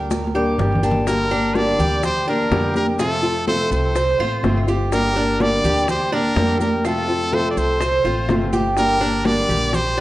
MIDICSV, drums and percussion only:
0, 0, Header, 1, 2, 480
1, 0, Start_track
1, 0, Key_signature, -2, "minor"
1, 0, Tempo, 481541
1, 1068, Time_signature, 4, 2, 24, 8
1, 9973, End_track
2, 0, Start_track
2, 0, Title_t, "Drums"
2, 107, Note_on_c, 9, 63, 97
2, 107, Note_on_c, 9, 70, 100
2, 109, Note_on_c, 9, 60, 72
2, 207, Note_off_c, 9, 63, 0
2, 207, Note_off_c, 9, 70, 0
2, 209, Note_off_c, 9, 60, 0
2, 269, Note_on_c, 9, 63, 67
2, 348, Note_on_c, 9, 70, 30
2, 368, Note_off_c, 9, 63, 0
2, 448, Note_off_c, 9, 70, 0
2, 587, Note_on_c, 9, 60, 36
2, 587, Note_on_c, 9, 61, 91
2, 589, Note_on_c, 9, 64, 104
2, 593, Note_on_c, 9, 70, 31
2, 687, Note_off_c, 9, 60, 0
2, 687, Note_off_c, 9, 61, 0
2, 689, Note_off_c, 9, 64, 0
2, 692, Note_off_c, 9, 70, 0
2, 750, Note_on_c, 9, 64, 104
2, 827, Note_on_c, 9, 60, 32
2, 831, Note_on_c, 9, 70, 63
2, 850, Note_off_c, 9, 64, 0
2, 909, Note_on_c, 9, 64, 94
2, 927, Note_off_c, 9, 60, 0
2, 931, Note_off_c, 9, 70, 0
2, 1009, Note_off_c, 9, 64, 0
2, 1067, Note_on_c, 9, 60, 76
2, 1070, Note_on_c, 9, 70, 96
2, 1071, Note_on_c, 9, 63, 38
2, 1167, Note_off_c, 9, 60, 0
2, 1170, Note_off_c, 9, 63, 0
2, 1170, Note_off_c, 9, 70, 0
2, 1310, Note_on_c, 9, 70, 26
2, 1314, Note_on_c, 9, 63, 34
2, 1409, Note_off_c, 9, 70, 0
2, 1413, Note_off_c, 9, 63, 0
2, 1547, Note_on_c, 9, 63, 98
2, 1547, Note_on_c, 9, 70, 31
2, 1548, Note_on_c, 9, 60, 64
2, 1647, Note_off_c, 9, 63, 0
2, 1647, Note_off_c, 9, 70, 0
2, 1648, Note_off_c, 9, 60, 0
2, 1788, Note_on_c, 9, 70, 70
2, 1791, Note_on_c, 9, 60, 32
2, 1792, Note_on_c, 9, 63, 30
2, 1792, Note_on_c, 9, 64, 72
2, 1888, Note_off_c, 9, 70, 0
2, 1890, Note_off_c, 9, 60, 0
2, 1892, Note_off_c, 9, 63, 0
2, 1892, Note_off_c, 9, 64, 0
2, 2025, Note_on_c, 9, 70, 98
2, 2027, Note_on_c, 9, 60, 79
2, 2027, Note_on_c, 9, 63, 28
2, 2027, Note_on_c, 9, 64, 67
2, 2124, Note_off_c, 9, 70, 0
2, 2126, Note_off_c, 9, 60, 0
2, 2126, Note_off_c, 9, 63, 0
2, 2126, Note_off_c, 9, 64, 0
2, 2268, Note_on_c, 9, 63, 37
2, 2268, Note_on_c, 9, 70, 29
2, 2269, Note_on_c, 9, 60, 35
2, 2367, Note_off_c, 9, 70, 0
2, 2368, Note_off_c, 9, 63, 0
2, 2369, Note_off_c, 9, 60, 0
2, 2506, Note_on_c, 9, 70, 28
2, 2507, Note_on_c, 9, 63, 82
2, 2509, Note_on_c, 9, 60, 79
2, 2509, Note_on_c, 9, 61, 88
2, 2606, Note_off_c, 9, 63, 0
2, 2606, Note_off_c, 9, 70, 0
2, 2609, Note_off_c, 9, 60, 0
2, 2609, Note_off_c, 9, 61, 0
2, 2747, Note_on_c, 9, 63, 83
2, 2749, Note_on_c, 9, 60, 28
2, 2749, Note_on_c, 9, 70, 58
2, 2846, Note_off_c, 9, 63, 0
2, 2849, Note_off_c, 9, 60, 0
2, 2849, Note_off_c, 9, 70, 0
2, 2985, Note_on_c, 9, 70, 104
2, 2987, Note_on_c, 9, 63, 40
2, 2989, Note_on_c, 9, 60, 68
2, 3085, Note_off_c, 9, 70, 0
2, 3087, Note_off_c, 9, 63, 0
2, 3088, Note_off_c, 9, 60, 0
2, 3225, Note_on_c, 9, 70, 29
2, 3226, Note_on_c, 9, 60, 35
2, 3226, Note_on_c, 9, 63, 34
2, 3325, Note_off_c, 9, 63, 0
2, 3325, Note_off_c, 9, 70, 0
2, 3326, Note_off_c, 9, 60, 0
2, 3466, Note_on_c, 9, 60, 64
2, 3466, Note_on_c, 9, 70, 29
2, 3469, Note_on_c, 9, 63, 68
2, 3565, Note_off_c, 9, 60, 0
2, 3566, Note_off_c, 9, 70, 0
2, 3568, Note_off_c, 9, 63, 0
2, 3706, Note_on_c, 9, 60, 32
2, 3707, Note_on_c, 9, 70, 80
2, 3711, Note_on_c, 9, 63, 32
2, 3806, Note_off_c, 9, 60, 0
2, 3807, Note_off_c, 9, 70, 0
2, 3811, Note_off_c, 9, 63, 0
2, 3945, Note_on_c, 9, 60, 74
2, 3946, Note_on_c, 9, 70, 99
2, 3949, Note_on_c, 9, 63, 33
2, 4045, Note_off_c, 9, 60, 0
2, 4046, Note_off_c, 9, 70, 0
2, 4048, Note_off_c, 9, 63, 0
2, 4186, Note_on_c, 9, 70, 29
2, 4190, Note_on_c, 9, 63, 33
2, 4285, Note_off_c, 9, 70, 0
2, 4289, Note_off_c, 9, 63, 0
2, 4424, Note_on_c, 9, 70, 33
2, 4425, Note_on_c, 9, 60, 76
2, 4425, Note_on_c, 9, 61, 90
2, 4426, Note_on_c, 9, 63, 83
2, 4524, Note_off_c, 9, 70, 0
2, 4525, Note_off_c, 9, 60, 0
2, 4525, Note_off_c, 9, 61, 0
2, 4526, Note_off_c, 9, 63, 0
2, 4664, Note_on_c, 9, 70, 64
2, 4665, Note_on_c, 9, 60, 32
2, 4764, Note_off_c, 9, 60, 0
2, 4764, Note_off_c, 9, 70, 0
2, 4903, Note_on_c, 9, 63, 35
2, 4907, Note_on_c, 9, 60, 75
2, 4907, Note_on_c, 9, 70, 106
2, 5003, Note_off_c, 9, 63, 0
2, 5006, Note_off_c, 9, 60, 0
2, 5007, Note_off_c, 9, 70, 0
2, 5144, Note_on_c, 9, 63, 29
2, 5148, Note_on_c, 9, 70, 24
2, 5244, Note_off_c, 9, 63, 0
2, 5248, Note_off_c, 9, 70, 0
2, 5384, Note_on_c, 9, 63, 99
2, 5386, Note_on_c, 9, 70, 31
2, 5387, Note_on_c, 9, 60, 58
2, 5483, Note_off_c, 9, 63, 0
2, 5485, Note_off_c, 9, 70, 0
2, 5487, Note_off_c, 9, 60, 0
2, 5626, Note_on_c, 9, 60, 27
2, 5626, Note_on_c, 9, 63, 33
2, 5626, Note_on_c, 9, 64, 76
2, 5627, Note_on_c, 9, 70, 79
2, 5725, Note_off_c, 9, 63, 0
2, 5725, Note_off_c, 9, 64, 0
2, 5726, Note_off_c, 9, 60, 0
2, 5727, Note_off_c, 9, 70, 0
2, 5862, Note_on_c, 9, 60, 78
2, 5866, Note_on_c, 9, 70, 90
2, 5868, Note_on_c, 9, 63, 34
2, 5868, Note_on_c, 9, 64, 61
2, 5962, Note_off_c, 9, 60, 0
2, 5965, Note_off_c, 9, 70, 0
2, 5968, Note_off_c, 9, 63, 0
2, 5968, Note_off_c, 9, 64, 0
2, 6103, Note_on_c, 9, 60, 33
2, 6108, Note_on_c, 9, 63, 36
2, 6110, Note_on_c, 9, 70, 30
2, 6203, Note_off_c, 9, 60, 0
2, 6208, Note_off_c, 9, 63, 0
2, 6210, Note_off_c, 9, 70, 0
2, 6345, Note_on_c, 9, 60, 75
2, 6345, Note_on_c, 9, 61, 89
2, 6348, Note_on_c, 9, 63, 85
2, 6350, Note_on_c, 9, 70, 32
2, 6445, Note_off_c, 9, 60, 0
2, 6445, Note_off_c, 9, 61, 0
2, 6447, Note_off_c, 9, 63, 0
2, 6450, Note_off_c, 9, 70, 0
2, 6584, Note_on_c, 9, 60, 33
2, 6587, Note_on_c, 9, 70, 70
2, 6589, Note_on_c, 9, 63, 77
2, 6683, Note_off_c, 9, 60, 0
2, 6687, Note_off_c, 9, 70, 0
2, 6689, Note_off_c, 9, 63, 0
2, 6824, Note_on_c, 9, 60, 72
2, 6826, Note_on_c, 9, 70, 99
2, 6828, Note_on_c, 9, 63, 40
2, 6924, Note_off_c, 9, 60, 0
2, 6926, Note_off_c, 9, 70, 0
2, 6928, Note_off_c, 9, 63, 0
2, 7065, Note_on_c, 9, 63, 30
2, 7066, Note_on_c, 9, 60, 31
2, 7066, Note_on_c, 9, 70, 27
2, 7164, Note_off_c, 9, 63, 0
2, 7165, Note_off_c, 9, 60, 0
2, 7166, Note_off_c, 9, 70, 0
2, 7301, Note_on_c, 9, 60, 60
2, 7304, Note_on_c, 9, 70, 31
2, 7305, Note_on_c, 9, 63, 72
2, 7401, Note_off_c, 9, 60, 0
2, 7404, Note_off_c, 9, 70, 0
2, 7405, Note_off_c, 9, 63, 0
2, 7541, Note_on_c, 9, 60, 29
2, 7546, Note_on_c, 9, 70, 76
2, 7547, Note_on_c, 9, 63, 32
2, 7641, Note_off_c, 9, 60, 0
2, 7646, Note_off_c, 9, 70, 0
2, 7647, Note_off_c, 9, 63, 0
2, 7778, Note_on_c, 9, 60, 78
2, 7784, Note_on_c, 9, 63, 29
2, 7787, Note_on_c, 9, 70, 97
2, 7878, Note_off_c, 9, 60, 0
2, 7884, Note_off_c, 9, 63, 0
2, 7887, Note_off_c, 9, 70, 0
2, 8027, Note_on_c, 9, 63, 34
2, 8029, Note_on_c, 9, 70, 29
2, 8127, Note_off_c, 9, 63, 0
2, 8129, Note_off_c, 9, 70, 0
2, 8261, Note_on_c, 9, 60, 77
2, 8261, Note_on_c, 9, 61, 100
2, 8265, Note_on_c, 9, 63, 89
2, 8268, Note_on_c, 9, 70, 29
2, 8360, Note_off_c, 9, 60, 0
2, 8360, Note_off_c, 9, 61, 0
2, 8364, Note_off_c, 9, 63, 0
2, 8367, Note_off_c, 9, 70, 0
2, 8500, Note_on_c, 9, 60, 32
2, 8504, Note_on_c, 9, 70, 71
2, 8507, Note_on_c, 9, 63, 73
2, 8600, Note_off_c, 9, 60, 0
2, 8603, Note_off_c, 9, 70, 0
2, 8607, Note_off_c, 9, 63, 0
2, 8738, Note_on_c, 9, 60, 71
2, 8747, Note_on_c, 9, 70, 93
2, 8838, Note_off_c, 9, 60, 0
2, 8847, Note_off_c, 9, 70, 0
2, 8988, Note_on_c, 9, 63, 32
2, 8990, Note_on_c, 9, 70, 26
2, 9088, Note_off_c, 9, 63, 0
2, 9090, Note_off_c, 9, 70, 0
2, 9221, Note_on_c, 9, 60, 66
2, 9225, Note_on_c, 9, 63, 100
2, 9231, Note_on_c, 9, 70, 27
2, 9321, Note_off_c, 9, 60, 0
2, 9325, Note_off_c, 9, 63, 0
2, 9331, Note_off_c, 9, 70, 0
2, 9461, Note_on_c, 9, 60, 31
2, 9465, Note_on_c, 9, 63, 30
2, 9465, Note_on_c, 9, 64, 83
2, 9470, Note_on_c, 9, 70, 66
2, 9561, Note_off_c, 9, 60, 0
2, 9565, Note_off_c, 9, 63, 0
2, 9565, Note_off_c, 9, 64, 0
2, 9570, Note_off_c, 9, 70, 0
2, 9699, Note_on_c, 9, 60, 76
2, 9702, Note_on_c, 9, 63, 28
2, 9702, Note_on_c, 9, 64, 59
2, 9707, Note_on_c, 9, 70, 87
2, 9798, Note_off_c, 9, 60, 0
2, 9802, Note_off_c, 9, 63, 0
2, 9802, Note_off_c, 9, 64, 0
2, 9807, Note_off_c, 9, 70, 0
2, 9940, Note_on_c, 9, 60, 35
2, 9973, Note_off_c, 9, 60, 0
2, 9973, End_track
0, 0, End_of_file